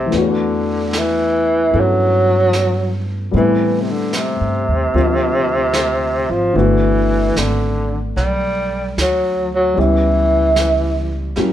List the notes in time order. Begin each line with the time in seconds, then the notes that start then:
Already playing: C3 A3 B3 C4 D#4 F#4
0.06 E3 A3
0.12 E2 B3 D4, brush sweep, snare
0.17 D3 F#4
0.93 snare, hi-hat pedal
0.98 E3
1.71 G2 B3 C#4 E4 A4, brush sweep
1.80 F#3
2.53 snare, hi-hat pedal
3.31 A2 G3 A3 B3 C4, brush sweep
3.36 E3 E4
3.81 C3
3.91 D3
4.13 C3, snare, hi-hat pedal
4.41 G2
4.68 D#2
4.93 D2 F3 A#3 C4 D4 F4, brush sweep
5.73 snare, hi-hat pedal
6.30 G#1 F3
6.53 G1 D3 E3 A3 B3, brush sweep
6.58 D4 F#4
7.36 G#1 D3, snare, hi-hat pedal
8.16 B1 G3, brush sweep, snare
8.97 D2, snare, hi-hat pedal
9.01 F#3
9.55 F#3
9.74 C#2 G3 B3 C#4 E4, brush sweep
9.78 E3 G4
10.56 snare, hi-hat pedal
11.36 F#2 A#3 C#4 E4 F#4 G4, brush sweep, snare